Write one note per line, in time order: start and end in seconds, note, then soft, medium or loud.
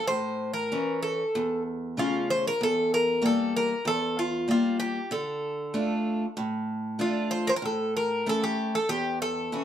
0.07 0.70 A2 medium
0.07 0.53 C5 medium
0.53 1.02 A#4 medium
0.72 1.22 E3 soft
0.72 1.22 C#4 medium
1.03 1.62 A4 medium
1.35 1.96 E2 medium
1.97 2.48 C#3 soft
1.97 2.48 A3 soft
1.97 2.48 C#4 soft
1.97 2.28 F4 medium
2.30 2.46 C5 medium
2.47 2.62 A#4 medium
2.61 3.21 E2 medium
2.61 2.91 A4 medium
2.94 3.25 A#4 medium
3.22 3.72 E3 soft
3.22 3.73 G3 soft
3.22 3.73 A#3 medium
3.26 3.54 A4 medium
3.57 3.85 A#4 medium
3.85 4.46 E2 medium
3.85 4.19 A4 medium
4.19 4.47 F4 medium
4.48 4.98 G3 soft
4.48 4.99 A#3 medium
4.48 4.79 F4 medium
4.80 5.12 G4 medium
5.11 5.72 D3 medium
5.11 6.33 A4 medium
5.74 6.24 A3 medium
5.74 6.24 D4 soft
5.74 6.25 F4 medium
6.37 6.98 A2 medium
6.99 7.49 A3 soft
6.99 7.50 D4 soft
6.99 7.50 F4 soft
6.99 7.30 F4 medium
7.31 7.46 C5 medium
7.47 7.51 A#4 medium
7.47 7.54 C5 medium
7.56 7.64 A#4 medium
7.62 8.23 A2 medium
7.62 7.93 A4 medium
7.97 8.28 A#4 medium
8.26 8.76 A3 medium
8.26 8.76 C#4 soft
8.26 8.77 E4 medium
8.26 8.43 A4 medium
8.44 8.75 G4 medium
8.75 8.88 A4 medium
8.89 9.50 E2 medium
8.89 9.18 G4 loud
9.22 9.64 A4 medium
9.52 9.64 E3 soft
9.52 9.64 C#4 soft
9.52 9.64 E4 medium